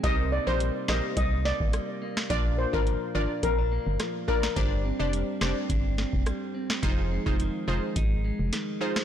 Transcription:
<<
  \new Staff \with { instrumentName = "Steel pan" } { \time 4/4 \key c \minor \tempo 4 = 106 ees''16 r16 d''16 c''16 r8 ees''16 r16 ees''16 r16 d''16 r4 r16 | d''16 r16 c''16 bes'16 r8 d''16 r16 bes'8. r8. bes'16 r16 | r1 | r1 | }
  \new Staff \with { instrumentName = "Synth pluck" } { \time 4/4 \key c \minor <ees' g' bes' c''>8. <ees' g' bes' c''>16 r8 <ees' g' bes' c''>16 r2 r16 | <d' f' bes' d''>8. <d' f' bes' d''>16 r8 <d' f' bes' d''>16 r4. r16 <d' f' bes' d''>8 | <d' g' c'' d''>8. <d' g' c'' d''>16 r8 <d' g' c'' d''>16 r2 r16 | <ees' f' aes' c''>8. <ees' f' aes' c''>16 r8 <ees' f' aes' c''>16 r4. r16 <ees' f' aes' c''>8 | }
  \new Staff \with { instrumentName = "Clean electric guitar" } { \time 4/4 \key c \minor <c ees'>8 bes8 g8 bes8 ees'8 bes8 g8 bes8 | <bes, d'>8 bes8 f8 bes8 c'16 d'16 bes8 f8 bes8 | <g, d'>8 c'8 g8 c'8 d'8 c'8 g8 c'8 | <f, ees'>8 aes8 ees8 aes8 ees'8 aes8 ees8 aes8 | }
  \new Staff \with { instrumentName = "FM bass" } { \clef bass \time 4/4 \key c \minor c,8. bes,,8 r16 bes,,16 r16 c,8. aes,,16 r4 | bes,,8. aes,,8 r16 aes,,16 r16 bes,,8. g,,16 r4 | g,,8. f,,8 r16 f,,16 r16 g,,8. f,,16 r4 | f,,8. f,,8 r16 f,,16 r16 aes,,8. f,,16 r4 | }
  \new DrumStaff \with { instrumentName = "Drums" } \drummode { \time 4/4 <hh bd>4 hh8 <ss sn>8 <hh bd>8 sn16 bd16 <hh ss>8. <ss sn>16 | <hh bd>8. bd16 hh4 <hh bd>4 <hh ss sn>8 bd16 <ss sn>16 | <hh bd>4 hh8 <ss sn>8 <hh bd>8 sn16 bd16 <hh ss>8. <ss sn>16 | <hh bd>8. bd16 hh4 <hh bd>4 <hh sn>8. <ss sn>16 | }
>>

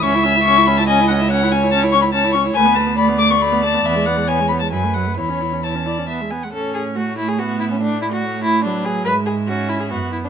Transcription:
<<
  \new Staff \with { instrumentName = "Violin" } { \time 3/4 \key cis \minor \tempo 4 = 142 cis'''8 e'''8 cis'''8 b''16 a''16 gis''8 fis''16 e''16 | \key a \major fis''8 gis''8 a''8 cis'''16 b''16 a''8 cis'''8 | gis''8 a''8 b''8 d'''16 cis'''16 b''8 a''8 | e''8 fis''8 gis''8 b''16 a''16 gis''8 fis''8 |
b''4 a''4 r4 | cis''4 cis''4 e''4 | d''4 cis''4 b'4 | e''2. | }
  \new Staff \with { instrumentName = "Violin" } { \time 3/4 \key cis \minor e''2 dis''4 | \key a \major cis''2 cis''4 | b'4 d''2~ | d''4 cis''4 b'4 |
cis''4 cis''8 d''8 e''8 gis''16 fis''16 | a'8 gis'8 fis'8 e'16 gis'16 fis'8 e'16 cis'16 | d'8 e'16 fis'8. e'8 d'8 gis'8 | b'8 gis'8 fis'8 e'16 gis'16 fis'8 e'16 d'16 | }
  \new Staff \with { instrumentName = "Viola" } { \time 3/4 \key cis \minor cis'16 e'16 cis'16 e'16 cis'16 e'16 cis'16 e'16 cis'16 e'16 cis'16 e'16 | \key a \major cis'16 e'16 cis'16 e'16 cis'16 e'16 cis'16 e'16 cis'16 e'16 cis'16 e'16 | a16 b16 a16 b16 a16 b16 a16 b16 a16 b16 a16 b16 | b16 gis16 b16 gis16 b16 gis16 b16 gis16 fis16 a16 fis16 a16 |
e'16 cis'16 e'16 cis'16 e'16 cis'16 e'16 cis'16 b16 gis16 b16 gis16 | cis'4 a4 b4 | a4 a4 fis4 | gis4 cis'4 b4 | }
  \new Staff \with { instrumentName = "Cello" } { \clef bass \time 3/4 \key cis \minor cis,2.~ | \key a \major cis,2. | d,2. | e,2 fis,4 |
e,2~ e,8 r8 | a,2.~ | a,2. | gis,2 fis,4 | }
>>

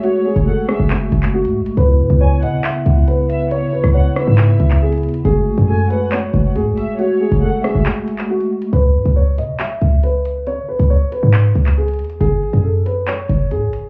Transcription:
<<
  \new Staff \with { instrumentName = "Violin section" } { \time 4/4 \key cis \minor \tempo 4 = 138 cis''4 fis''8 e''8 r2 | r4 gis''8 fis''8 r4. e''8 | cis''4 fis''8 e''4. r4 | r4 gis''8 fis''8 r4. e''8 |
cis''4 fis''8 e''8 r2 | r1 | r1 | r1 | }
  \new Staff \with { instrumentName = "Grand piano" } { \time 4/4 \key cis \minor fis'8 gis'8 a'8 gis'4. fis'8 r8 | b'4 cis''8 dis''8 e''4 b'4 | cis''8 b'8 cis''8 b'4. gis'8 r8 | gis'4 a'8 b'8 cis''4 gis'4 |
fis'8 gis'8 a'8 gis'4. fis'8 r8 | b'4 cis''8 dis''8 e''4 b'4 | cis''8 b'8 cis''8 b'4. gis'8 r8 | gis'4 a'8 b'8 cis''4 gis'4 | }
  \new Staff \with { instrumentName = "Pipe organ" } { \time 4/4 \key cis \minor <gis a fis'>1 | <cis b e'>1~ | <cis b e'>1 | <gis a fis'>1~ |
<gis a fis'>1 | r1 | r1 | r1 | }
  \new Staff \with { instrumentName = "808-style bass" } { \clef bass \time 4/4 \key cis \minor r8. fis,,8 r8 fis,,8. fis,,8. a,16. fis,,16. | cis,8 gis,16 cis,8. cis16 r8. cis,4.~ | cis,16 e16 cis,16 cis,8 r8 gis,8. cis,4 dis,8 | fis,,8 a,,16 fis,4.~ fis,16 fis,,8 a,16. fis,,16. r16 |
r8. fis,,8 r8 fis,,16 r2 | cis,8 gis,16 cis,8. cis16 r8. cis,4.~ | cis,16 e16 cis,16 cis,8 r8 gis,8. cis,4 dis,8 | fis,,8 a,,16 fis,4.~ fis,16 fis,,8 a,16. fis,,16. r16 | }
  \new DrumStaff \with { instrumentName = "Drums" } \drummode { \time 4/4 hh8. hh16 r8 <hh ss>8 hc8 hh16 hc16 r16 hh8 hh16 | hh8. hh16 r8 hh8 <hc hh>8 hh8 hh8 hh8 | hh8. <hh ss>16 r8 <hh ss>8 hc8 hh16 hc16 r16 hh32 hh32 hh32 hh32 hh16 | hh8. hh16 r8 hh8 <hc hh>8 hh8 hh8 hh8 |
hh8. hh16 r8 <hh ss>8 hc8 hh16 hc16 r16 hh8 hh16 | hh8. hh16 r8 hh8 <hc hh>8 hh8 hh8 hh8 | hh8. hh16 r8 hh8 hc8 hh16 hc16 r16 hh32 hh32 hh32 hh32 hh16 | hh8. hh16 r8 hh8 <hc hh>8 hh8 hh8 hh8 | }
>>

